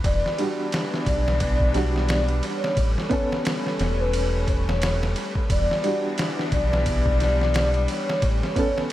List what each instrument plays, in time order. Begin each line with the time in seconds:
Already playing: synth drone B4
0.04 fingered electric bass E1, string section E3 G3 B3 D4, soft synth lead D5, kick, ride
0.26 snare
0.37 felt piano G3 D4 F#4, ride
0.72 snare, ride
0.94 snare
1.06 fingered electric bass B1, soft synth lead D5, kick, ride
1.28 snare
1.40 soft synth lead D5, kick, ride
1.60 kick
1.73 felt piano G3 D4 F#4, snare, ride
1.95 soft synth lead D5, snare
2.09 snare, ride
2.28 ride
2.43 soft synth lead C#5, ride
2.64 snare
2.77 fingered electric bass A1, string section A3 C#4, kick, ride
2.98 soft synth lead C#5, snare
3.09 felt piano B3 C#4 A4, kick, ride
3.32 snare
3.45 snare, ride
3.67 snare
3.79 fingered electric bass E1, snare, ride
4.00 soft synth lead B4
4.13 ride
4.47 soft synth lead C#5, kick, ride
4.69 snare
4.82 snare, ride
5.03 snare
5.16 ride
5.35 kick
5.50 fingered electric bass E1, string section E3 G3 B3 D4, soft synth lead D5, kick, ride
5.71 snare
5.82 felt piano G3 D4 F#4, ride
6.18 snare, ride
6.39 snare
6.52 fingered electric bass B1, soft synth lead D5, kick, ride
6.73 snare
6.86 soft synth lead D5, kick, ride
7.06 kick
7.20 snare, ride
7.41 soft synth lead D5, snare
7.54 snare, ride
7.74 ride
7.88 soft synth lead C#5, ride
8.10 snare
8.22 fingered electric bass A1, string section A3 C#4, kick, ride
8.43 soft synth lead C#5, snare
8.55 felt piano B3 C#4 A4, kick, ride
8.78 snare